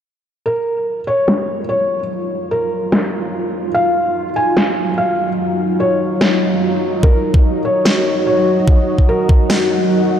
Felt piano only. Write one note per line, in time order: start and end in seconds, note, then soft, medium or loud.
0.46 0.99 A#4 medium
1.07 1.61 C#5 medium
1.69 1.98 C#5 medium
2.51 3.66 A#4 medium
3.74 4.28 F5 medium
4.36 4.90 G#5 medium
4.98 5.27 F5 medium
5.80 6.95 C#5 medium
7.03 7.57 A#4 medium
7.65 8.18 C#5 medium
8.27 8.56 C#5 medium
9.09 10.20 A#4 medium